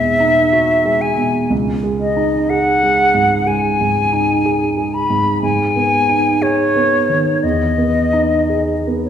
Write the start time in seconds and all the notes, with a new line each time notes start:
Already playing: B2 G#3 D#4 F#4 E5
0.20 D#4
0.53 F#4
0.85 G#3
1.01 G#5
1.17 B2
1.50 C#2
1.83 G#3
2.00 D#5
2.17 D#4
2.49 G#4 F#5
2.83 G#3
3.14 G#2
3.47 G#3 G#5
3.80 G#2
4.13 D#4
4.46 G#4
4.77 G#3
4.94 B5
5.10 G#2
5.42 G#2 G#5
5.76 B3
6.09 D#4
6.42 G#4 C#5
6.76 B3
7.09 D#3
7.43 E2 D#5
7.78 B3
8.13 D#4
8.49 G#4
8.87 B3
9.04 C#5